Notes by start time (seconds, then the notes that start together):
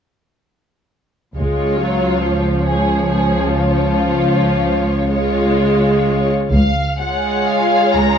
1.37 C#2 G#3 F4 C#5
1.81 F#3
2.24 F3
2.66 G#4 C#5
3.06 G#4
3.46 F4
5.13 G#3 F4 C#5
6.53 C#2 F5
7.00 G#3 F4 G#4 C#5 F#5
7.48 F5
7.93 C#2 A#5